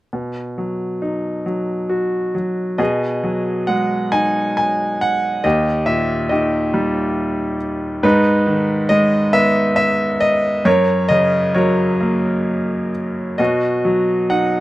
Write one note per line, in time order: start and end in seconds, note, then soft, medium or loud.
0.13 2.76 B2 soft
0.58 1.44 F#3 soft
1.02 2.75 D#4 soft
1.46 2.33 F#3 soft
1.89 2.76 F#4 soft
2.35 2.78 F#3 soft
2.78 5.40 B2 soft
2.78 4.09 G#4 soft
2.78 3.71 D#5 medium
3.24 4.97 F#3 soft
3.67 5.40 G#3 soft
3.67 4.14 F#5 medium
4.12 5.40 D#4 soft
4.12 4.55 G#5 medium
4.57 5.03 G#5 medium
5.01 5.46 F#5 medium
5.44 8.00 D#2 medium
5.44 6.30 G4 soft
5.44 5.84 D#5 medium
5.86 7.56 A#2 soft
5.86 6.31 E5 medium
6.29 8.00 D#3 soft
6.29 7.57 G4 soft
6.29 7.56 D#5 medium
6.74 8.00 G3 soft
8.03 10.62 G#2 medium
8.03 9.30 D#4 medium
8.03 8.93 B4 medium
8.47 10.17 D#3 soft
8.89 10.61 G#3 soft
8.89 9.30 D#5 medium
9.33 10.61 B3 medium
9.33 9.74 E5 loud
9.76 10.18 E5 medium
10.20 10.67 D#5 medium
10.65 13.35 F#2 medium
10.65 11.54 A#4 medium
10.65 11.12 C#5 medium
11.09 12.89 C#3 soft
11.09 11.56 D#5 medium
11.54 13.35 F#3 soft
11.54 12.89 A#4 soft
11.54 12.88 C#5 medium
12.01 13.35 A#3 soft
13.38 14.60 B2 soft
13.38 14.60 F#4 soft
13.38 14.33 D#5 medium
13.85 14.60 F#3 soft
14.30 14.60 D#4 soft
14.30 14.60 F#5 medium